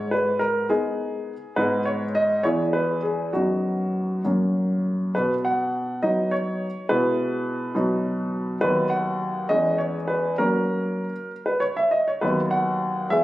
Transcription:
grand piano
Already playing: G#2 C#5
0.11 B4
0.39 A#4
0.70 G#3 B3 D#4 G#4
1.56 G#2 G#3 B3 D#4 B4
1.85 C#5
2.15 D#5
2.43 E2 G#3 B3 E4 C#5
2.73 B4
3.03 G#4
3.33 F#2 F#3 B3 D#4 F#4
4.24 F#2 F#3 A#3 C#4
5.15 B2 B4
5.45 F#5
6.03 F#3 B3 D#4 D#5
6.31 C#5
6.89 B2 G#3 B3 E4 B4
7.75 B2 F#3 B3 D#4
8.61 D#2 F#3 B3 D#4 B4
8.90 F#5
9.49 E2 G#3 B3 C#4 D#5
9.78 C#5
10.08 B4
10.38 F#3 A#3 C#4 A#4
11.46 B4
11.60 C#5
11.77 E5
11.91 D#5
12.08 C#5
12.21 D#2 F#3 B3 D#4 B4
12.51 F#5
13.10 E2 G#3 B3 G#4 E5

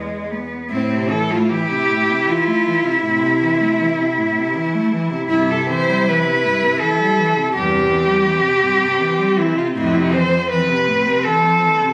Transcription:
cello
Already playing: E2 G#3
0.31 B3
0.72 A2 C4 E4
0.93 C3
1.10 E3 A4
1.30 A3 F4
1.50 E3 G4
1.69 C3
1.89 A2
2.09 C3
2.28 E3 F4
2.47 A3
2.67 E3
2.84 C3
3.04 A2 C3 E4
3.23 C3
3.42 E3
3.60 A3
3.80 E3
3.99 C3
4.17 A2
4.37 C3
4.55 E3
4.74 A3
4.92 E3
5.11 C3
5.29 G2 C3 E4
5.48 C3 A4
5.69 E3 C5
5.88 G3
6.08 E3 B4
6.25 C3
6.46 G2
6.63 C3
6.79 E3 A4
6.99 G3
7.18 E3
7.36 C3
7.54 E2 G2 C4 G4
7.72 C3
7.90 E3
8.06 G3
8.25 E3
8.43 C3
8.62 G2
8.81 C3
9.00 E3
9.18 G3
9.37 E3 E4
9.56 C3 F4
9.77 F2 A2 E4
9.95 C3
10.13 E3 C5
10.32 F3
10.50 E3 B4
10.69 C3
10.87 A2
11.06 C3
11.25 E3 A4
11.45 F3
11.65 E3
11.82 C3

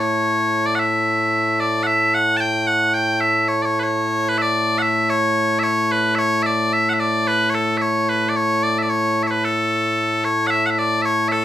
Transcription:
bagpipes
Already playing: A2 A3
0.00 C#5
0.66 D5
0.75 F#5
0.80 E5
1.60 D5
1.83 E5 F#5
2.15 F#5
2.37 G5 A5
2.67 F#5
2.94 G5
3.21 E5
3.48 C#5
3.62 C#5 D5
3.80 B4 C#5
4.29 B4
4.38 D5 E5
4.78 E5 F#5
5.10 C#5
5.59 E5
5.63 C#5
5.92 B4
6.15 C#5 E5
6.43 D5 E5
6.73 E5
6.89 F#5
6.94 E5
7.00 D5
7.27 B4
7.50 C#5
7.54 A4
7.77 E5
7.82 C#5
8.09 B4
8.29 D5
8.36 C#5
8.63 D5
8.78 E5
8.82 D5
8.90 C#5
9.23 E5
9.27 B4 C#5
9.44 A4
10.24 C#5
10.47 E5 F#5
10.66 F#5
10.71 E5
10.78 D5
11.02 C#5 E5
11.28 A4 E5

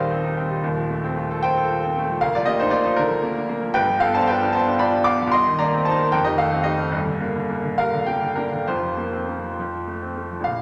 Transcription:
grand piano
Already playing: D#1 D#2 D#3 C4 D#4 F4 G4 A4 C5 D5 D#5 F5
0.00 G3
0.11 C4
0.24 D#4
0.37 C4
0.49 G3
0.63 D#1 D#2
0.77 F3
0.90 A3
1.04 C4
1.17 F4
1.31 A4
1.43 F4 C5 G5
1.56 A4
1.71 F4
1.83 C4
1.97 A3
2.09 F3
2.21 D2 A#4 F5
2.35 F3 F4 D5
2.46 A#3 G4 D#5
2.59 D4 D#4 C5
2.70 A#3 F4 D5
2.83 F3 D#4 C5
2.96 D3 D4 A#4
3.09 F3
3.23 A#3
3.37 D4
3.49 A#3
3.63 F3
3.74 G1 G2 B4 G5
3.89 F3
4.00 B3 A4 F5
4.15 D4 C5 A5
4.28 F4 B4 G5
4.42 D4
4.53 B3 C5 A5
4.67 D4
4.79 F4 D5 B5
4.92 D4
5.04 B3 F5 D6
5.20 F3
5.27 C2
5.32 D#5 C6
5.45 D#3
5.59 A#3 D5 A#5
5.74 C4
5.85 D#4 C5 A5
5.99 A#4
6.12 F2 A#4 G5
6.24 D#3 G4 D#5
6.38 A3 A4 F5
6.52 C4
6.63 D#4 G4 D#5
6.78 C4
6.92 G1 G2
7.06 D3
7.20 A#3
7.35 D3
7.49 A#3
7.64 D3
7.78 G3 A#4 F5
7.94 D3
8.06 A#3 A#4 G5
8.22 D3
8.35 A#3 D4 A#4
8.52 D3
8.67 F1 F2 F4 C5
8.83 F3
8.97 A#3
9.13 C4
9.28 A#3
9.44 F3
9.59 F2
9.74 F3
9.87 A3
10.02 C4
10.17 A3
10.32 F3
10.40 A#1 F5
10.46 A#0

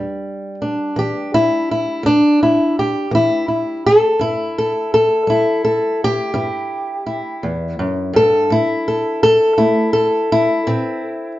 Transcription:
steel-string acoustic guitar
Already playing: E2 G3
0.62 D4
0.96 E3 G4
1.34 E4
1.71 E4
2.03 E2 D4
2.43 E4
2.79 G4
3.11 E3 E4
3.48 E4
3.86 A4
4.19 G2 E4
4.58 A4
4.94 A4
5.27 G3 E4
5.65 A4
6.04 G4
6.34 G2 E4
7.06 E4
7.43 E2
7.79 F#2
8.13 G2 A4
8.50 A2 E4
8.88 A4
9.23 A4
9.58 A3 E4
9.93 A4
10.32 E4
10.67 A2 C4

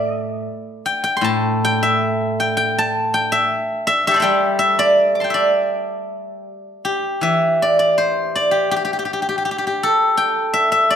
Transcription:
guzheng
Already playing: A2 D5 E5 G5
0.86 G5
1.04 G5
1.17 C6
1.21 A2 A5
1.65 G5
1.83 E5
2.40 G5
2.57 G5
2.78 A5
3.14 G5
3.32 E5
3.87 E5
4.07 G4 A4 E5
4.14 C5 D5
4.20 G3 E5 G5
4.59 E5
4.79 D5
5.15 D6
5.20 A5 C6
5.24 G5
5.30 E5
5.34 D5
6.85 G4
7.21 E3 E5
7.62 D5
7.79 D5
7.98 C5
8.36 D5
8.51 G4
8.71 G4
8.76 G4
8.85 G4
8.93 G4
8.99 G4
9.05 G4
9.13 G4
9.22 G4
9.29 G4
9.38 G4
9.45 G4
9.51 G4
9.58 G4
9.67 G4
9.83 A4
10.17 G5
10.54 E5
10.72 E5
10.90 D5

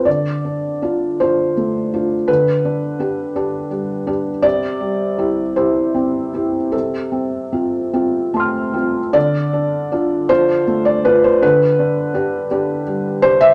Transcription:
felt piano
0.05 D3 D5
0.45 D4
0.82 D4 F4
1.20 D4 F4 C5
1.57 A3
1.93 D4 F4
2.28 D3 B4
2.65 D4
2.99 D4 G4
3.36 D4 G4
3.71 G3
4.07 D4 G4
4.42 C3 D5
4.80 G3
5.18 E4 G4
5.56 E4 G4 C5
5.94 C4
6.34 E4 G4
6.72 C3 A4
7.12 C4
7.52 C4 F4
7.93 C4 F4
8.34 A3 A5 C6
8.40 F6
8.73 C4 F4
9.13 D3 D5
9.53 D4
9.92 D4 F4
10.29 D4 F4 C5
10.67 A3
10.85 D5
11.05 D4 F4 B4
11.24 C5
11.42 D3 B4
11.79 D4
12.14 D4 G4
12.51 D4 G4
12.87 G3
13.22 D4 G4 C5
13.41 E5

